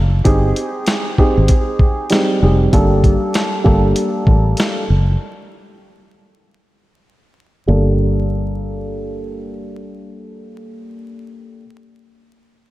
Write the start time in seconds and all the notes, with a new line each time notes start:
Already playing: F#1
0.24 G1 C4 D#4 G4 G#4, kick, closed hi-hat
0.56 closed hi-hat
0.86 snare, closed hi-hat
1.18 C4 D#4 G4 G#4, kick
1.37 G#1
1.48 kick, closed hi-hat
1.79 kick
2.10 G3 C4 D#4 G#4, snare, closed hi-hat
2.42 F1 G3 C4 D#4 G#4
2.73 G1 G3 A#3 D4 A4, kick, closed hi-hat
3.04 kick, closed hi-hat
3.34 snare, closed hi-hat
3.64 G1 G3 A#3 D4 A4, kick
3.96 closed hi-hat
4.27 A1, kick
4.57 snare, closed hi-hat
4.90 F#1
7.67 G1 G3 A#3 D4 A4